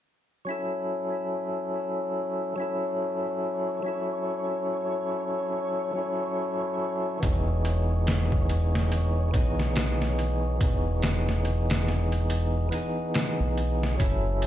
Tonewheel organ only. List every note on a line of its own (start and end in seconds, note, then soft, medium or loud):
0.45 2.53 F#3 medium
0.45 2.54 C#4 medium
0.45 2.55 E4 medium
0.51 2.56 A4 medium
2.56 3.80 F#3 medium
2.56 3.81 C#4 medium
2.56 3.82 E4 medium
2.62 3.83 A4 medium
3.83 5.91 F#3 medium
3.83 5.92 C#4 medium
3.83 5.93 E4 medium
3.88 5.94 A4 medium
5.93 7.18 F#3 medium
5.93 7.19 C#4 medium
5.93 7.20 E4 medium
5.99 7.20 A4 medium
7.19 9.28 E3 medium
7.19 9.29 B3 medium
7.19 9.30 D#4 medium
7.24 9.31 G#4 medium
9.31 10.56 E3 medium
9.31 10.57 B3 medium
9.31 10.58 D#4 medium
9.37 10.59 G#4 medium
10.57 12.66 E3 medium
10.57 12.67 B3 medium
10.61 12.69 D#4 medium
10.61 12.69 G#4 medium
12.69 13.94 E3 medium
12.69 13.95 B3 medium
12.69 13.96 D#4 medium
12.75 13.97 G#4 medium
13.97 14.47 F#3 medium
13.97 14.47 C#4 medium
13.97 14.47 E4 medium
14.03 14.47 A4 medium